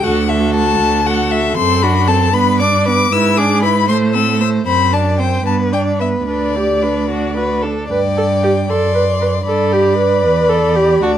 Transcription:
0.03 0.71 D2 medium
0.03 0.28 F#4 soft
0.03 0.28 A4 soft
0.03 0.31 F#5 medium
0.29 1.04 F#4 soft
0.29 1.04 A4 soft
0.29 0.54 E5 medium
0.54 1.08 A5 medium
0.80 1.48 D2 medium
1.06 1.56 F#4 soft
1.06 1.57 A4 soft
1.06 1.32 F#5 medium
1.31 1.56 E5 medium
1.57 2.36 F#2 medium
1.57 1.84 C4 medium
1.57 1.85 A4 soft
1.57 1.84 C6 medium
1.82 2.10 D4 soft
1.82 2.09 F#4 soft
1.82 2.09 B5 medium
2.08 2.33 C4 soft
2.08 2.33 A4 soft
2.08 2.35 A5 medium
2.33 3.11 G2 medium
2.33 2.63 B3 soft
2.33 2.61 B4 medium
2.33 2.59 B5 medium
2.60 2.89 D4 soft
2.60 2.87 D5 soft
2.60 2.85 D6 medium
2.86 3.13 B3 soft
2.86 3.11 B4 soft
2.86 3.14 D6 medium
3.12 3.91 G#2 soft
3.12 3.40 E4 medium
3.12 3.38 B4 soft
3.12 3.39 E6 medium
3.37 3.64 D4 medium
3.37 3.63 G#4 soft
3.37 3.62 D6 medium
3.62 3.88 E4 soft
3.62 3.87 B4 soft
3.62 3.88 B5 medium
3.88 4.66 A2 medium
3.88 4.16 A3 soft
3.88 4.16 C5 soft
3.88 3.96 C6 medium
4.14 4.42 C4 soft
4.14 4.42 A4 soft
4.14 4.40 E6 medium
4.40 4.66 A3 soft
4.40 4.65 C5 soft
4.40 4.48 E6 medium
4.66 5.44 F#2 soft
4.66 4.94 C4 soft
4.66 4.94 C5 soft
4.66 4.95 B5 medium
4.93 5.20 D4 soft
4.93 5.21 D5 soft
4.93 5.18 A5 medium
5.19 5.45 C4 soft
5.19 5.45 C5 soft
5.19 5.45 G5 medium
5.45 6.26 G2 soft
5.45 5.74 B3 soft
5.45 5.75 B4 soft
5.45 5.54 A5 medium
5.73 6.03 D4 soft
5.73 6.01 D5 soft
5.73 5.81 G5 medium
6.00 6.27 B3 soft
6.00 6.27 B4 soft
6.00 6.09 E5 soft
6.27 7.67 D2 soft
6.27 6.58 D4 soft
6.27 6.57 B4 soft
6.27 7.61 D5 soft
6.56 6.85 G4 soft
6.56 6.84 D5 soft
6.83 7.10 D4 soft
6.83 7.09 B4 soft
7.09 7.39 D4 soft
7.09 7.34 F#4 soft
7.37 7.66 F#4 soft
7.37 7.64 B4 soft
7.62 7.91 D4 soft
7.62 7.89 A4 soft
7.90 8.71 G2 soft
7.90 7.99 B4 medium
7.90 8.64 D5 soft
7.90 8.71 G5 soft
8.17 8.25 A4 medium
8.43 8.51 G4 medium
8.69 9.47 F#2 soft
8.69 8.94 A4 medium
8.69 9.45 D5 soft
8.69 9.46 C6 soft
8.95 9.03 B4 medium
9.22 9.30 B4 medium
9.47 10.26 G2 soft
9.47 9.74 A4 medium
9.47 10.99 D5 soft
9.47 11.04 B5 soft
9.72 9.97 G4 medium
9.98 10.51 B4 medium
10.25 11.02 E2 soft
10.49 10.77 A4 medium
10.76 11.02 G4 medium
11.02 11.18 D2 medium
11.02 11.10 F#4 medium
11.02 11.18 D5 soft
11.02 11.18 A5 soft

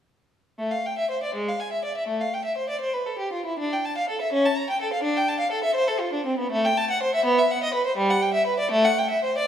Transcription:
0.59 0.71 A3 medium
0.72 0.85 F5 medium
0.86 0.98 G5 medium
0.99 1.10 E5 medium
1.11 1.22 C5 medium
1.23 1.35 D5 medium
1.35 1.47 G#3 medium
1.48 1.60 F5 medium
1.60 1.72 G#5 medium
1.72 1.84 E5 medium
1.85 1.96 D5 medium
1.97 2.09 E5 medium
2.08 2.20 A3 medium
2.21 2.33 F5 medium
2.33 2.45 G5 medium
2.45 2.57 E5 medium
2.58 2.69 C5 medium
2.69 2.81 D5 medium
2.81 2.93 C5 medium
2.94 3.06 B4 medium
3.07 3.19 A4 medium
3.19 3.32 G4 medium
3.33 3.46 F4 medium
3.46 3.59 E4 medium
3.59 3.72 D4 medium
3.73 3.85 G5 medium
3.85 3.97 A5 medium
3.98 4.09 F5 medium
4.09 4.21 A4 medium
4.21 4.33 E5 medium
4.33 4.44 C#4 medium
4.46 4.57 A5 medium
4.57 4.69 A#5 medium
4.70 4.80 G5 medium
4.81 4.92 A4 medium
4.93 5.04 F5 medium
5.03 5.15 D4 medium
5.17 5.28 G5 medium
5.28 5.40 A5 medium
5.40 5.52 F5 medium
5.51 5.63 A4 medium
5.64 5.76 E5 medium
5.75 5.87 C5 medium
5.88 6.00 A4 medium
6.00 6.13 F4 medium
6.13 6.26 D4 medium
6.26 6.39 C4 medium
6.39 6.51 B3 medium
6.51 6.64 A3 medium
6.65 6.77 G5 medium
6.77 6.90 A5 medium
6.91 7.02 F#5 medium
7.03 7.14 C5 medium
7.15 7.26 E5 medium
7.25 7.37 B3 loud
7.39 7.50 E5 medium
7.51 7.62 F#5 medium
7.63 7.74 D#5 medium
7.74 7.86 B4 medium
7.86 7.98 C5 medium
7.97 8.09 G3 loud
8.10 8.22 F#5 medium
8.22 8.35 G5 medium
8.34 8.46 E5 medium
8.47 8.59 B4 medium
8.60 8.72 D5 medium
8.71 8.84 A3 loud
8.85 8.97 F#5 medium
8.99 9.11 G5 medium
9.11 9.23 E5 medium
9.24 9.37 C5 medium
9.38 9.47 D5 medium

